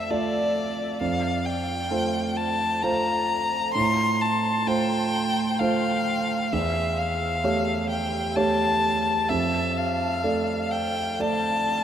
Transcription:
Already playing: grand piano F2 A3 F4 D5, violin E5
0.10 grand piano A3 F4 D5, violin D5
1.01 grand piano F2, violin F5
1.45 violin G5
1.91 grand piano A3 F4 C5
2.36 violin A5
2.82 grand piano A3 F4 C5, violin A#5
3.74 grand piano A2, violin C6
4.21 violin A5
4.67 grand piano A3 F4 C5, violin G5
5.60 grand piano A3 F4 C5, violin F5
6.53 grand piano E2, violin E5
6.99 violin F5
7.44 grand piano A3 G4 C#5
7.90 violin G5
8.36 grand piano A3 G4 C#5, violin A5
9.29 grand piano F2, violin E5
9.77 violin F5
10.24 grand piano A3 A4 D5
10.71 violin G5
11.20 grand piano A3 A4 D5, violin A5

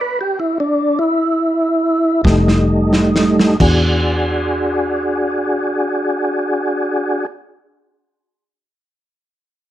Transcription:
0.01 tonewheel organ B4
0.21 tonewheel organ G4
0.40 tonewheel organ E4
0.60 tonewheel organ D4
0.99 tonewheel organ E4
2.24 fingered electric bass F1, tonewheel organ G3 A3 D#4, kick, snare
2.48 snare
2.93 snare
3.16 snare
3.40 snare
3.60 fingered electric bass E2, tonewheel organ D4 F#4 G#4, kick, crash

